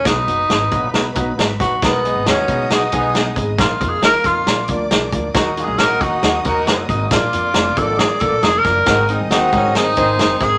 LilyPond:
<<
  \new Staff \with { instrumentName = "String section" } { \time 4/4 \key bes \phrygian \tempo 4 = 136 <b' b''>1 | <ees'' ees'''>1 | <f'' f'''>2 <d'' d'''>2 | <ees'' ees'''>1 |
<d'' d'''>1 | <ees'' ees'''>2. <c'' c'''>4 | }
  \new Staff \with { instrumentName = "Tenor saxophone" } { \time 4/4 \key bes \phrygian dis'2~ dis'8 r4 fis'8 | ces'4 des'4 ees'4 r4 | \tuplet 3/2 { f'4 aes'8 } bes'8 f'4 r4. | \tuplet 3/2 { ges'4 aes'8 } bes'8 ges'4 r4 ees'8 |
f'4. a'8 aes'8 a'8 \tuplet 3/2 { aes'8 bes'4~ } | bes'4 r8 des'8 ees'4. aes'8 | }
  \new Staff \with { instrumentName = "Horn section" } { \time 4/4 \key bes \phrygian r1 | <ees' ges' bes'>8 <ces' ees' aes'>8 <ces' ees' ges'>4 <ces' ees' ges'>8 <ces' ees' aes'>4 r8 | r1 | <ees' ges' bes'>8 <d' f' aes'>8 <bes ees' ges'>4 <bes ees' ges'>8 <ees' ges' bes'>4 r8 |
r1 | <ees' ges' bes'>8 <c' ees' aes'>8 <c' ees' ges'>4 <c' ees' aes'>8 <ees' aes' c''>4 r8 | }
  \new Staff \with { instrumentName = "Upright piano" } { \time 4/4 \key bes \phrygian <fis b dis' fis'>8 <fis b dis' fis'>8 <fis b dis' fis'>8 <fis b dis' fis'>8 <fis b dis' fis'>8 <fis b dis' fis'>8 <fis b dis' fis'>8 <fis b dis' fis'>8 | <aes ces' ees' aes'>8 <aes ces' ees' aes'>8 <aes ces' ees' aes'>8 <aes ces' ees' aes'>8 <aes ces' ees' aes'>8 <aes ces' ees' aes'>8 <aes ces' ees' aes'>8 <aes ces' ees' aes'>8 | <f bes ees' f'>8 <f bes ees' f'>8 <f bes ees' f'>8 <f bes ees' f'>8 <f bes d' f'>8 <f bes d' f'>8 <f bes d' aes'>8 <f bes d' f'>8 | <ges bes ees' ges'>8 <ges bes ees' ges'>8 <ges bes ees' ges'>8 <ges bes ees' ges'>8 <ges bes ees' ges'>8 <ges bes ees' ges'>8 <ges bes ees' ges'>8 <ges bes ees' ges'>8 |
<f bes d' f'>8 <f bes d' f'>8 <f bes d' f'>8 <f bes d' f'>8 <f bes d' f'>8 <f bes d' f'>8 <f bes d' f'>8 <f bes d' f'>8 | <ees aes c' ees'>8 <ees aes c' ees'>8 <ees aes c' ges'>8 <ees aes c' ees'>8 <ees aes c' ees'>8 <ees aes c' ees'>8 <ees aes c' ees'>8 <ees aes c' ees'>8 | }
  \new Staff \with { instrumentName = "Upright bass" } { \clef bass \time 4/4 \key bes \phrygian b,,8 fis,,8 aes,,8 bes,,8 b,,8 b,,8 aes,,8 bes,,8 | ces,8. aes,,16 ees,8 ces8 ces,8 ces,4 aes,,8 | bes,,8 f,8 ees,8 f,8 bes,,8 d,8 ces,8 d,8 | ees,8. ces,16 bes,,8 ees8 ees,8 ees,8 ges,,8 aes,,8 |
bes,,8 f,8 f,,8 aes,,8. r16 bes,,16 bes,,16 f,,8 ges,,8 | aes,,8. c,16 ees,8 aes,8 aes,,8 aes,,8 ges,,8 aes,,8 | }
  \new DrumStaff \with { instrumentName = "Drums" } \drummode { \time 4/4 <hh bd sn>8 hh8 <hh sn>8 <hh bd>8 <hh sn>8 <hh bd>8 <hh sn>8 <hh bd sn>8 | <hh bd sn>8 hh8 <hh sn>8 <hh bd>8 <hh sn>8 <hh bd>8 <hh sn>8 <hh bd>8 | <hh bd sn>8 <hh bd>8 <hh sn>8 <hh bd>8 <hh sn>8 <hh bd>8 <hh sn>8 <hh bd>8 | <hh bd sn>8 hh8 <hh sn>8 <hh bd>8 <hh sn>8 <hh bd>8 <hh sn>8 <hh bd>8 |
<hh bd sn>8 hh8 <hh sn>8 <hh bd>8 <hh sn>8 <hh bd>8 <hh sn>8 <hh bd sn>8 | <hh bd sn>8 hh8 <hh sn>8 <hh bd>8 <hh sn>8 <hh bd>8 <hh sn>8 <hh bd sn>8 | }
>>